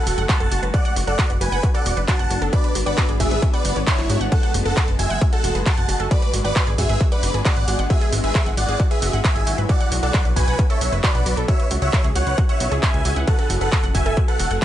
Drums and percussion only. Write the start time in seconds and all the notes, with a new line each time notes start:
0.07 open hi-hat
0.18 closed hi-hat
0.29 kick, clap, closed hi-hat
0.40 closed hi-hat
0.52 open hi-hat
0.63 closed hi-hat
0.74 kick, closed hi-hat
0.85 closed hi-hat
0.96 open hi-hat
1.08 closed hi-hat
1.19 kick, clap, closed hi-hat
1.30 closed hi-hat
1.41 open hi-hat
1.52 closed hi-hat
1.63 kick, closed hi-hat
1.75 closed hi-hat
1.86 open hi-hat
1.97 closed hi-hat
2.08 kick, clap, closed hi-hat
2.19 closed hi-hat
2.31 open hi-hat
2.42 closed hi-hat
2.53 kick, closed hi-hat
2.64 closed hi-hat
2.75 open hi-hat
2.86 closed hi-hat
2.98 kick, clap, closed hi-hat
3.09 closed hi-hat
3.20 kick, open hi-hat
3.31 closed hi-hat
3.42 kick, closed hi-hat
3.54 closed hi-hat
3.65 open hi-hat
3.76 closed hi-hat
3.87 kick, clap, closed hi-hat
3.98 clap, closed hi-hat
4.10 open hi-hat
4.21 closed hi-hat
4.32 kick, closed hi-hat
4.43 closed hi-hat
4.54 open hi-hat
4.66 closed hi-hat
4.77 kick, clap, closed hi-hat
4.88 closed hi-hat
4.99 open hi-hat
5.10 closed hi-hat
5.21 kick, closed hi-hat
5.33 closed hi-hat
5.44 open hi-hat
5.55 closed hi-hat
5.66 kick, clap, closed hi-hat
5.78 closed hi-hat
5.89 open hi-hat
6.00 closed hi-hat
6.11 kick, closed hi-hat
6.22 closed hi-hat
6.34 open hi-hat
6.45 closed hi-hat
6.56 kick, clap, closed hi-hat
6.67 closed hi-hat
6.78 kick, open hi-hat
6.89 closed hi-hat
7.01 kick, closed hi-hat
7.12 closed hi-hat
7.23 open hi-hat
7.34 closed hi-hat
7.45 kick, clap, closed hi-hat
7.57 closed hi-hat
7.68 open hi-hat
7.79 closed hi-hat
7.90 kick, closed hi-hat
8.01 closed hi-hat
8.13 open hi-hat
8.24 closed hi-hat
8.35 kick, clap, closed hi-hat
8.46 closed hi-hat
8.57 open hi-hat
8.69 closed hi-hat
8.80 kick, closed hi-hat
8.91 closed hi-hat
9.02 open hi-hat
9.13 closed hi-hat
9.24 kick, clap, closed hi-hat
9.36 closed hi-hat
9.47 open hi-hat
9.58 closed hi-hat
9.69 kick, closed hi-hat
9.81 closed hi-hat
9.92 open hi-hat
10.03 closed hi-hat
10.14 kick, clap, closed hi-hat
10.25 closed hi-hat
10.36 kick, open hi-hat
10.48 closed hi-hat
10.59 kick, closed hi-hat
10.70 closed hi-hat
10.81 open hi-hat
10.93 closed hi-hat
11.04 kick, clap, closed hi-hat
11.15 closed hi-hat
11.26 open hi-hat
11.37 closed hi-hat
11.48 kick, closed hi-hat
11.60 closed hi-hat
11.71 open hi-hat
11.82 closed hi-hat
11.93 kick, clap, closed hi-hat
12.04 closed hi-hat
12.16 open hi-hat
12.27 closed hi-hat
12.38 kick, closed hi-hat
12.49 closed hi-hat
12.60 open hi-hat
12.72 closed hi-hat
12.83 kick, clap, closed hi-hat
12.94 closed hi-hat
13.05 open hi-hat
13.16 closed hi-hat
13.28 kick, closed hi-hat
13.39 closed hi-hat
13.50 open hi-hat
13.61 closed hi-hat
13.72 kick, clap, closed hi-hat
13.84 closed hi-hat
13.95 kick, open hi-hat
14.06 closed hi-hat
14.17 kick, closed hi-hat
14.28 closed hi-hat
14.39 open hi-hat
14.51 closed hi-hat